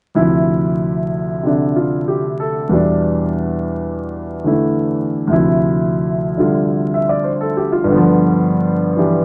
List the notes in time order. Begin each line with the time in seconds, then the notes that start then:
0.15 D2 C3 F3 E4
1.43 C3 D3 D4
1.76 F4
2.08 G4
2.40 A4
2.69 E2 B2 G3
2.74 D4
4.44 D3 A3 E4
5.27 D2 C3 F3
5.33 E4
6.37 D3 G3 F4
6.94 E5
7.09 D5
7.24 C5
7.41 A4
7.57 G4
7.72 F4
7.84 G2
7.88 D3 B3
7.96 F3
8.97 E3 D4 G4